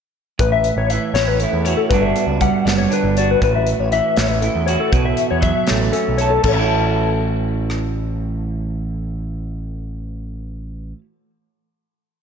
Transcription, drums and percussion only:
0.39 kick medium
0.39 closed hi-hat medium
0.64 closed hi-hat soft
0.90 closed hi-hat medium
1.15 snare medium
1.15 closed hi-hat medium
1.40 closed hi-hat medium
1.65 closed hi-hat medium
1.91 kick medium
1.91 closed hi-hat medium
2.16 closed hi-hat medium
2.41 kick medium
2.41 closed hi-hat medium
2.67 snare medium
2.67 closed hi-hat medium
2.92 closed hi-hat medium
3.17 closed hi-hat medium
3.42 kick medium
3.42 closed hi-hat medium
3.67 closed hi-hat soft
3.92 closed hi-hat soft
4.17 snare medium
4.17 closed hi-hat medium
4.42 closed hi-hat medium
4.68 closed hi-hat medium
4.92 kick medium
4.92 closed hi-hat medium
5.17 closed hi-hat medium
5.42 kick medium
5.42 closed hi-hat medium
5.67 snare medium
5.67 closed hi-hat medium
5.93 closed hi-hat medium
6.18 closed hi-hat medium
6.43 kick medium
6.43 crash medium
7.70 cross-stick soft

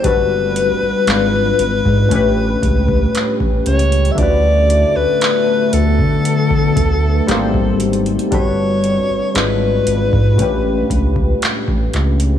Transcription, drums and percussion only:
0.04 kick loud
0.04 closed hi-hat medium
0.56 closed hi-hat medium
1.07 clap loud
1.07 closed hi-hat medium
1.59 closed hi-hat medium
1.85 kick medium
2.11 kick medium
2.11 closed hi-hat medium
2.63 kick loud
2.63 closed hi-hat medium
2.89 kick medium
3.15 clap loud
3.15 closed hi-hat medium
3.40 kick medium
3.66 closed hi-hat medium
3.66 open hi-hat medium
3.79 closed hi-hat soft
3.92 closed hi-hat soft
4.05 closed hi-hat soft
4.18 kick loud
4.18 closed hi-hat medium
4.70 closed hi-hat medium
5.21 clap loud
5.21 closed hi-hat medium
5.73 closed hi-hat medium
5.99 kick medium
6.25 closed hi-hat medium
6.51 kick medium
6.76 kick loud
6.76 closed hi-hat medium
7.29 clap loud
7.29 closed hi-hat medium
7.54 kick medium
7.80 closed hi-hat medium
7.80 open hi-hat medium
7.93 closed hi-hat soft
8.06 closed hi-hat soft
8.19 closed hi-hat soft
8.32 kick loud
8.32 closed hi-hat medium
8.84 closed hi-hat medium
9.35 clap loud
9.35 closed hi-hat medium
9.87 closed hi-hat medium
10.13 kick medium
10.39 kick medium
10.39 closed hi-hat medium
10.90 kick loud
10.90 closed hi-hat medium
11.16 kick loud
11.42 clap loud
11.42 closed hi-hat medium
11.68 kick medium
11.94 clap medium
11.94 closed hi-hat soft
11.94 open hi-hat medium
12.20 closed hi-hat medium

